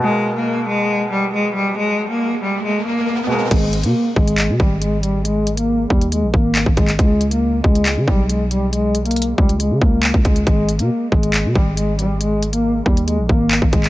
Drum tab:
CC |--------------------------------|--------------------------------|x-------------------------------|--------------------------------|
HH |--------------------------------|--------------------------------|x---x-x-------x-x-------x---x---|x---x-x-------x-x-------x---x-x-|
CP |--------------------------------|--------------------------------|----------------x---------------|------------------------x-----x-|
BD |--------------------------------|--------------------------------|o-----------o-------o-----------|------------o-------o-----o-o---|

CC |--------------------------------|--------------------------------|--------------------------------|--------------------------------|
HH |x---x-x-------x-x-------x---x---|x---x-xxxx----x-x-------x---x-x-|x---x-x-------x-x-------x---x---|x---x-x-------x-x-------x---x-x-|
CP |----------------x---------------|------------------------x-------|----------------x---------------|------------------------x-----x-|
BD |o-----------o-------o-----------|------------o-------o-----o-o---|o-----------o-------o-----------|------------o-------o-----o-o---|